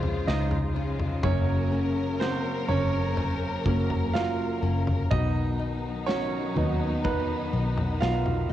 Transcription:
0.00 0.24 C#2 medium
0.00 1.24 C#3 medium
0.00 5.07 C#3 medium
0.00 1.20 F3 medium
0.00 1.20 G#3 medium
0.00 1.34 G#3 medium
0.00 0.24 C4 medium
0.00 0.75 C#4 medium
0.00 1.25 C#4 medium
0.00 0.26 F4 medium
0.00 1.20 F4 medium
0.00 0.30 C5 loud
0.00 1.24 C#5 medium
0.00 floor tom medium
0.27 1.20 C#2 loud
0.27 1.21 D#4 medium
0.27 1.34 F4 medium
0.27 1.27 D#5 medium
0.27 snare loud
0.51 floor tom medium
0.76 1.72 C#4 medium
1.00 floor tom medium
1.22 2.65 F#1 loud
1.22 5.11 F#2 medium
1.22 5.07 F#3 medium
1.22 1.88 F#3 medium
1.22 5.06 A#3 medium
1.22 1.88 A#3 medium
1.22 2.17 C#4 medium
1.22 5.06 A#4 medium
1.22 2.23 C#5 medium
1.22 kick loud
1.22 floor tom loud
1.72 3.16 C#4 medium
2.20 2.66 C4 medium
2.20 4.14 F#4 medium
2.20 2.70 C5 medium
2.20 snare loud
2.68 3.62 F#1 medium
2.68 3.64 A#3 medium
2.68 3.65 C#4 medium
2.68 4.18 C#5 medium
2.68 floor tom medium
3.17 4.61 C#4 medium
3.17 floor tom medium
3.65 4.59 F#1 medium
3.65 4.10 F#3 medium
3.65 5.21 A#3 medium
3.65 4.10 A#3 soft
3.65 4.10 C#4 medium
3.65 kick medium
3.90 floor tom medium
4.13 5.07 F4 medium
4.13 6.07 F#4 medium
4.13 5.14 F5 medium
4.13 snare loud
4.62 5.08 F#1 medium
4.62 5.21 C#4 medium
4.87 floor tom medium
5.11 6.52 B1 loud
5.11 8.53 B2 medium
5.11 8.53 D#3 medium
5.11 8.53 F#3 medium
5.11 8.53 B3 medium
5.11 6.04 D#4 medium
5.11 8.53 D#4 medium
5.11 6.11 D#5 loud
5.11 kick loud
5.11 floor tom loud
5.59 7.04 D#4 medium
6.06 7.01 C#4 medium
6.06 8.00 F#4 medium
6.06 7.07 C#5 loud
6.06 snare loud
6.56 7.49 D#2 medium
6.56 8.53 F#3 medium
6.56 7.52 B3 medium
6.56 7.04 B3 soft
6.56 8.53 D#4 medium
6.56 floor tom medium
7.04 7.98 B3 medium
7.04 8.49 D#4 medium
7.04 8.04 B4 medium
7.04 kick medium
7.04 floor tom medium
7.53 7.98 B1 medium
7.53 8.53 B3 medium
7.77 floor tom medium
8.01 8.47 B1 loud
8.01 8.53 F4 medium
8.01 8.53 F#4 medium
8.01 8.53 F5 medium
8.01 snare loud
8.26 floor tom medium
8.49 8.53 D#4 medium

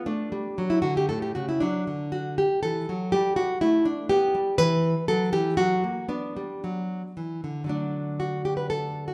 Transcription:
0.06 0.31 A3 medium
0.06 0.69 D4 medium
0.32 0.57 G3 medium
0.58 0.82 F#3 medium
0.70 0.81 E4 medium
0.82 1.08 D3 medium
0.82 0.96 F#4 medium
0.97 1.08 G4 medium
1.09 1.35 A2 medium
1.09 1.22 A4 medium
1.22 1.35 G4 medium
1.35 1.61 C#3 medium
1.35 1.48 F#4 medium
1.49 1.62 E4 medium
1.60 1.87 F#3 medium
1.60 2.11 D4 medium
1.87 2.43 D3 medium
2.12 2.38 F#4 medium
2.38 2.62 G4 medium
2.63 2.88 E3 medium
2.63 3.11 A4 medium
2.89 3.13 F#3 medium
3.12 3.49 G3 medium
3.12 3.36 G4 medium
3.36 3.61 F#4 medium
3.61 3.98 A3 medium
3.61 3.86 E4 medium
3.85 4.09 D4 medium
4.09 4.34 B3 medium
4.09 4.57 G4 loud
4.35 4.58 G3 medium
4.58 4.94 E3 medium
4.58 5.06 B4 loud
5.08 5.32 F#3 medium
5.08 5.32 A4 loud
5.33 5.57 E3 medium
5.33 5.57 G4 loud
5.57 5.82 F#3 medium
5.57 6.07 F#4 loud
5.84 6.08 A#3 medium
6.09 6.34 B3 medium
6.09 7.11 D4 medium
6.37 6.62 G3 medium
6.64 7.02 F#3 medium
7.17 7.41 E3 medium
7.44 7.63 D3 soft
7.64 9.13 D3 soft
7.64 9.14 F#3 soft
7.68 9.14 A3 soft
7.68 8.18 D4 medium
8.20 8.44 F#4 medium
8.45 8.56 G4 medium
8.57 8.69 B4 medium
8.70 9.06 A4 medium
9.08 9.14 F#4 medium

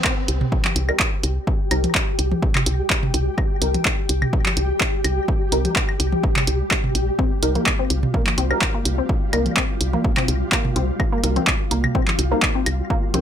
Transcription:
0.00 13.21 G3 medium
0.00 7.21 G4 medium
0.04 kick loud
0.04 clap medium
0.04 high woodblock medium
0.28 0.44 C2 medium
0.28 closed hi-hat medium
0.41 mid tom medium
0.52 kick loud
0.65 clap medium
0.65 high tom medium
0.76 0.91 C2 medium
0.76 closed hi-hat medium
0.89 0.95 G3 medium
0.89 0.95 C4 medium
0.89 0.95 D#4 medium
0.89 0.95 A#4 medium
0.89 high woodblock medium
1.00 kick loud
1.00 clap loud
1.23 1.39 C2 loud
1.23 closed hi-hat medium
1.47 kick loud
1.71 1.87 C2 loud
1.71 1.78 G3 medium
1.71 1.78 C4 medium
1.71 1.78 D#4 medium
1.71 1.78 A#4 medium
1.71 closed hi-hat medium
1.71 high woodblock medium
1.84 closed hi-hat soft
1.84 high tom medium
1.95 kick loud
1.95 clap loud
2.19 2.34 C2 medium
2.19 closed hi-hat medium
2.32 high tom medium
2.42 kick loud
2.55 clap medium
2.55 mid tom medium
2.55 high woodblock medium
2.66 2.82 C2 loud
2.66 closed hi-hat medium
2.90 kick loud
2.90 clap loud
3.03 mid tom medium
3.14 3.29 C2 loud
3.14 closed hi-hat medium
3.38 kick loud
3.38 high woodblock medium
3.62 3.77 C2 medium
3.62 3.69 G3 medium
3.62 3.69 C4 medium
3.62 3.69 D#4 medium
3.62 3.69 A#4 medium
3.62 closed hi-hat loud
3.74 closed hi-hat soft
3.74 high tom medium
3.85 kick loud
3.85 clap medium
4.09 4.25 C2 loud
4.09 closed hi-hat medium
4.22 mid tom medium
4.22 high woodblock medium
4.33 kick loud
4.46 clap medium
4.46 high tom medium
4.57 4.72 C2 medium
4.57 closed hi-hat medium
4.81 kick loud
4.81 clap medium
5.04 5.20 C2 loud
5.04 closed hi-hat medium
5.04 high woodblock medium
5.28 kick loud
5.52 5.68 C2 loud
5.52 5.59 G3 medium
5.52 5.59 C4 medium
5.52 5.59 D#4 medium
5.52 5.59 A#4 medium
5.52 closed hi-hat medium
5.65 closed hi-hat soft
5.65 high tom medium
5.76 kick loud
5.76 clap medium
5.89 high woodblock medium
6.00 6.15 C2 loud
6.00 closed hi-hat loud
6.12 high tom medium
6.24 kick loud
6.36 clap medium
6.36 mid tom medium
6.47 6.63 C2 medium
6.47 closed hi-hat medium
6.71 kick loud
6.71 clap medium
6.71 high woodblock medium
6.84 mid tom medium
6.95 7.10 A#1 medium
6.95 closed hi-hat medium
7.19 7.24 C4 medium
7.19 13.21 F4 medium
7.19 kick loud
7.43 7.58 C2 medium
7.43 7.50 G3 medium
7.43 7.50 C4 medium
7.43 7.50 D#4 medium
7.43 7.50 A#4 medium
7.43 closed hi-hat medium
7.55 7.62 A#3 medium
7.55 closed hi-hat soft
7.55 high tom medium
7.66 kick loud
7.66 clap medium
7.66 high woodblock medium
7.79 7.83 C4 medium
7.90 8.06 C2 medium
7.90 closed hi-hat medium
8.03 mid tom medium
8.14 8.21 A#3 medium
8.14 kick loud
8.27 clap medium
8.27 high tom medium
8.38 8.53 C2 medium
8.38 8.43 C4 medium
8.38 closed hi-hat medium
8.51 8.57 G3 medium
8.51 8.57 C4 medium
8.51 8.57 D#4 medium
8.51 8.57 A#4 loud
8.51 high woodblock medium
8.62 kick loud
8.62 clap medium
8.74 8.81 A#3 medium
8.85 9.01 C2 loud
8.85 closed hi-hat medium
8.98 9.02 C4 medium
9.09 kick loud
9.33 9.49 C2 loud
9.33 9.40 G3 medium
9.33 9.40 A#3 medium
9.33 9.40 C4 medium
9.33 9.40 D#4 medium
9.33 9.40 A#4 medium
9.33 closed hi-hat medium
9.33 high woodblock medium
9.46 closed hi-hat soft
9.46 high tom medium
9.57 9.62 C4 medium
9.57 kick loud
9.57 clap medium
9.81 9.96 C2 medium
9.81 closed hi-hat medium
9.93 10.00 A#3 medium
9.93 high tom medium
10.04 kick loud
10.17 10.21 C4 medium
10.17 clap medium
10.17 mid tom medium
10.17 high woodblock medium
10.28 10.44 C2 medium
10.28 closed hi-hat medium
10.52 10.59 A#3 medium
10.52 kick loud
10.52 clap medium
10.65 mid tom medium
10.76 10.91 C2 loud
10.76 10.81 C4 medium
10.76 closed hi-hat medium
11.00 kick loud
11.00 high woodblock medium
11.12 11.19 A#3 medium
11.23 11.39 C2 loud
11.23 11.31 G3 medium
11.23 11.31 C4 medium
11.23 11.31 D#4 medium
11.23 11.31 A#4 medium
11.23 closed hi-hat medium
11.36 11.40 C4 medium
11.36 closed hi-hat soft
11.36 high tom medium
11.47 kick loud
11.47 clap medium
11.71 11.87 C2 loud
11.71 11.78 A#3 medium
11.71 closed hi-hat medium
11.84 mid tom medium
11.84 high woodblock medium
11.95 12.00 C4 medium
11.95 kick loud
12.08 clap medium
12.08 high tom soft
12.19 12.34 C2 loud
12.19 closed hi-hat medium
12.31 12.38 G3 medium
12.31 12.38 A#3 medium
12.31 12.38 C4 medium
12.31 12.38 D#4 medium
12.31 12.38 A#4 medium
12.43 kick loud
12.43 clap medium
12.55 12.59 C4 medium
12.66 12.82 C2 loud
12.66 closed hi-hat medium
12.66 high woodblock medium
12.90 12.97 A#3 medium
12.90 kick loud
13.14 13.21 C2 loud
13.14 13.21 G3 medium
13.14 13.19 C4 medium
13.14 13.21 C4 medium
13.14 13.21 D#4 medium
13.14 13.21 A#4 medium
13.14 closed hi-hat medium
13.14 high tom medium

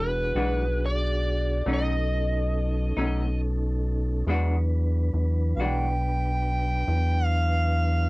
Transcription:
0.00 0.33 E1 medium
0.00 1.63 D4 medium
0.00 1.64 F#4 medium
0.00 1.64 G#4 medium
0.00 0.85 B4 medium
0.35 1.62 B1 medium
0.35 0.63 E3 medium
0.35 0.63 G#3 medium
0.35 0.63 D4 medium
0.35 0.62 F#4 medium
0.86 1.72 D5 medium
1.66 2.93 B1 medium
1.66 1.93 B2 medium
1.66 1.93 A3 medium
1.66 1.93 C#4 medium
1.66 4.26 C#4 medium
1.66 4.25 D#4 medium
1.66 1.94 D#4 medium
1.66 4.25 A4 medium
1.74 3.40 D#5 medium
2.97 4.24 B1 loud
2.97 3.24 B2 medium
2.97 3.24 A3 medium
2.97 3.24 C#4 medium
2.97 3.23 D#4 medium
4.27 5.10 E2 medium
4.27 4.54 E3 medium
4.27 8.09 F#3 medium
4.27 4.54 G#3 medium
4.27 4.55 D4 medium
4.27 8.09 D4 medium
4.27 4.55 F#4 medium
4.27 8.09 B4 medium
5.14 5.54 E2 medium
5.57 6.84 B1 medium
5.57 5.86 D4 medium
5.57 5.85 F#4 medium
5.57 7.26 G5 loud
5.61 5.86 E3 medium
5.61 5.86 G#3 medium
6.88 8.09 E2 loud
7.26 8.09 F5 loud

